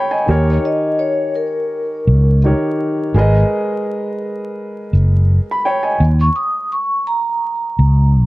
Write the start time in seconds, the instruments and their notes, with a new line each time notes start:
Already playing: grand piano C#5 G5 B5
0.11 grand piano D#5 G#5
0.26 fretless electric bass D#2, grand piano D#3 D#4 G4 A#4
0.30 grand piano C#5
0.50 vibraphone C#5
0.65 vibraphone D#5
0.99 vibraphone C#5
1.35 vibraphone A#4
2.07 fretless electric bass C#2
2.44 grand piano D#3 D#4 G4 A#4 C#5
3.14 fretless electric bass G#1, grand piano G#3 G#4 A#4 B4
3.19 grand piano D#5
4.93 fretless electric bass F#1
5.51 grand piano B5
5.65 grand piano C#5 G5
5.83 grand piano D#5 G#5
6.00 fretless electric bass D#2
6.21 vibraphone C#6
6.36 vibraphone D#6
6.72 vibraphone C#6
7.07 vibraphone A#5
7.79 fretless electric bass C#2